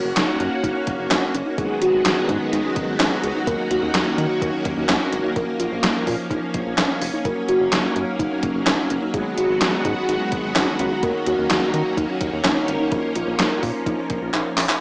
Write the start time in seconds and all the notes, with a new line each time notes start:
Already playing: A#3 C#4 F#4
0.04 F#1
0.16 F#1 D#4, snare, clap, closed hi-hat
0.40 F#2 C#4, closed hi-hat
0.64 F#1 D#4, kick, closed hi-hat
0.75 C#4
0.87 F#1, kick, closed hi-hat
0.99 F#1
1.11 F#1 D#4, snare, clap, closed hi-hat
1.34 F#1 C#4, closed hi-hat
1.46 D#4
1.58 G#1 D#3 F#3 G#3 B3 F#4 G#4, kick, closed hi-hat
1.82 G#1 F#4, closed hi-hat
1.94 G#1
2.05 G#1 D#4, snare, clap, closed hi-hat
2.29 G#2 C#4, kick, closed hi-hat
2.52 G#1 D#4, closed hi-hat
2.64 C#4
2.76 G#1, kick, closed hi-hat
2.88 G#1
3.00 G#1 D#4, snare, clap, closed hi-hat
3.23 C#2 C#4, closed hi-hat
3.35 D#4
3.47 D#2 D#3 A#3 C#4 A#4, kick, closed hi-hat
3.71 D#2 F#4, closed hi-hat
3.82 D#2
3.94 D#2 D#4, snare, clap, closed hi-hat
4.18 D#3 C#4, closed hi-hat
4.42 D#2 D#4, kick, closed hi-hat
4.53 C#4
4.65 D#2, kick, closed hi-hat
4.77 D#2
4.89 D#2 D#4, snare, clap, closed hi-hat
5.12 G#1 C#4, closed hi-hat
5.24 D#4
5.36 A#1 F3 C#4 A#4, kick, closed hi-hat
5.60 A#1 F4, closed hi-hat
5.72 A#1
5.83 A#1 D#4, snare, clap, closed hi-hat
6.07 A#2 C#4, kick, open hi-hat
6.30 A#1 D#4, kick, closed hi-hat
6.42 C#4
6.54 A#1, kick, closed hi-hat
6.66 A#1
6.78 A#1 D#4, snare, clap, closed hi-hat
7.01 F1 C#4, open hi-hat
7.13 D#4
7.25 F#1 F#3 A#3 A#4, kick, closed hi-hat
7.48 F#1 F#4, closed hi-hat
7.60 F#1
7.72 F#1 D#4, snare, clap, closed hi-hat
7.96 F#2 C#4, closed hi-hat
8.19 F#1 D#4, kick, closed hi-hat
8.31 C#4
8.43 F#1, kick, closed hi-hat
8.55 F#1
8.67 F#1 D#4, snare, clap, closed hi-hat
8.90 F#1 C#4, closed hi-hat
9.03 D#4
9.14 G#1 D#3 G#3 B3 F#4 G#4, kick, closed hi-hat
9.38 G#1 F#4, closed hi-hat
9.49 G#1
9.61 G#1 D#4, snare, clap, closed hi-hat
9.85 G#2 C#4, kick, closed hi-hat
10.09 G#1 D#4, closed hi-hat
10.20 C#4
10.32 G#1, kick, closed hi-hat
10.44 G#1
10.56 G#1 D#4, snare, clap, closed hi-hat
10.79 C#2 C#4, closed hi-hat
10.91 D#4
11.03 D#2 F#3 A#3 C#4 A#4, kick, closed hi-hat
11.26 D#2 F#4, closed hi-hat
11.38 D#2
11.50 D#2 D#4, snare, clap, closed hi-hat
11.74 D#3 C#4, closed hi-hat
11.97 D#2 D#4, kick, closed hi-hat
12.09 C#4
12.21 D#2, kick, closed hi-hat
12.33 D#2
12.44 D#2 D#4, snare, clap, closed hi-hat
12.68 G#1 C#4, closed hi-hat
12.80 D#4
12.92 A#1 F3 A#4, kick, closed hi-hat
13.15 A#1 F4, closed hi-hat
13.27 A#1
13.39 A#1 D#4, snare, clap, closed hi-hat
13.63 A#2 C#4, kick, open hi-hat
13.86 A#1 D#4, kick, closed hi-hat
13.98 C#4
14.10 A#1, kick, closed hi-hat
14.22 A#1
14.34 A#1 D#4, clap, closed hi-hat
14.57 A#1 C#4, clap, open hi-hat
14.69 D#4, clap